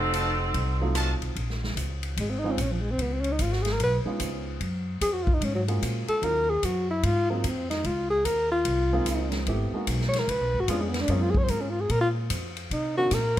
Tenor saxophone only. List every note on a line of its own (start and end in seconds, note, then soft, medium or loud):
2.20 2.32 G#3 medium
2.30 2.40 C4 medium
2.39 2.53 D#4 loud
2.51 2.63 C4 medium
2.62 2.74 C#4 medium
2.72 2.82 F3 medium
2.81 2.93 G#3 medium
2.91 3.03 C4 loud
3.02 3.14 B3 medium
3.13 3.22 C4 medium
3.21 3.33 C#4 loud
3.32 3.44 D#4 medium
3.42 3.54 F4 medium
3.53 3.64 F#4 medium
3.62 3.74 G#4 loud
3.73 3.80 A#4 medium
3.83 3.98 B4 loud
5.02 5.14 G#4 loud
5.13 5.25 F#4 medium
5.23 5.35 F4 loud
5.34 5.46 D#4 medium
5.44 5.55 C#4 medium
5.55 5.63 F#3 medium
6.09 6.25 A4 loud
6.24 6.51 A#4 loud
6.50 6.66 G#4 loud
6.65 6.90 F#4 medium
6.90 7.06 E4 medium
7.05 7.30 F4 loud
7.32 7.48 G#3 medium
7.47 7.69 C4 medium
7.70 7.88 D#4 medium
7.86 8.09 F4 medium
8.10 8.27 G#4 loud
8.25 8.51 A#4 loud
8.52 9.43 F4 loud
10.09 10.21 C#5 loud
10.19 10.31 A#4 loud
10.30 10.62 B4 loud
10.60 10.71 F#4 loud
10.70 10.83 F4 medium
10.81 10.91 G#3 medium
10.90 11.02 B3 medium
11.01 11.12 D4 loud
11.11 11.23 C#4 medium
11.21 11.32 F4 medium
11.30 11.39 G#4 loud
11.38 11.45 C#5 loud
11.44 11.52 C5 medium
11.50 11.63 A#4 medium
11.61 11.72 C#4 medium
11.70 11.82 F4 medium
11.81 11.93 G#4 loud
11.91 12.00 A#4 loud
12.01 12.09 F4 loud
12.73 12.96 D#4 medium
12.97 13.15 F#4 loud
13.14 13.40 A#4 loud